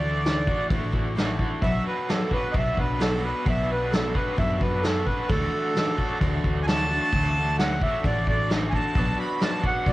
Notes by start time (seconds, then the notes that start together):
Already playing: D2 D3 A3 D4 F#4 D5
0.02 A3 E4 F#4
0.24 E3 A3 E4 F#4, snare, open hi-hat
0.47 D3 A3 D4 E4 F#4, kick
0.70 A1 D3 E3 A3 E4 F#4, kick, open hi-hat
0.92 A3 E4 F#4, kick
1.15 D3 E3 A3 D4 E4 F#4, snare, open hi-hat
1.39 A3 E4 F#4, kick
1.62 B1 B2 F#3 B3 D4 F#4 E5, kick, open hi-hat
1.86 B3 D4 F#4 B4
2.08 F#3 B3 D4 A4, snare, open hi-hat
2.31 B2 F#3 B3 D4 F#4 B4, kick
2.52 B1 B2 F#3 B3 D4 F#4 D#5, kick, open hi-hat
2.58 E5
2.77 B1 B3 D4 F#4 B4, kick
2.98 B2 F#3 B3 D4 F#4 A4, snare, open hi-hat
3.23 B3 D4 F#4 B4
3.45 B1 B2 F#3 B3 D4 F#4, kick, open hi-hat
3.50 E5
3.70 B3 D4 F#4 B4
3.91 F#3 B3 D4 F#4 A4, snare, open hi-hat
4.14 B2 F#3 B3 D4 F#4 B4, kick
4.36 F#2 B2 F#3 B3 D4 F#4 E5, kick, open hi-hat
4.58 B3 D4 F#4 B4, kick
4.82 B2 F#3 B3 D4 F#4 A4, snare, open hi-hat
5.06 B3 D4 F#4 B4, kick
5.29 D2 D3 E3 F#3 A3 D4 F#4 A4 E5 F#5, kick, open hi-hat
5.51 A3 D4 F#4
5.73 E3 A3 D4 F#4, snare, open hi-hat
5.97 D3 F#3 A3 D4 F#4, kick
6.21 D2 D3 E3 A3 D4 F#4, kick, open hi-hat
6.44 D2 A3 D4 F#4, kick
6.62 D3 G#5
6.67 E3 F#3 A3 D4 F#4 A5, snare, open hi-hat
6.90 A3 D4 F#4
7.12 D2 D3 E3 F#3 A3 D4 F#4, kick, open hi-hat
7.36 A3 D4 F#4
7.57 E3 A3 D4 F#4 F#5, snare, open hi-hat
7.81 D3 F#3 A3 D4 F#4 E5, kick
8.04 A1 D3 E3 A3 D4 F#4 D5, kick, open hi-hat
8.27 A3 D4 F#4 D5, kick
8.49 D3 E3 F#3 A3 D4 F#4, snare, open hi-hat
8.70 G#5, kick
8.74 A3 D4 F#4 A5
8.95 B1 B2 F#3 B3 D4 F#4 D5, kick, open hi-hat
9.18 B3 D4 F#4 B5
9.40 F#3 B3 D4 A5, snare, open hi-hat
9.64 B2 F#3 B3 D4 F#4 F#5, kick
9.86 B1 B2 F#3 B3 D4 F#4 D5, kick, open hi-hat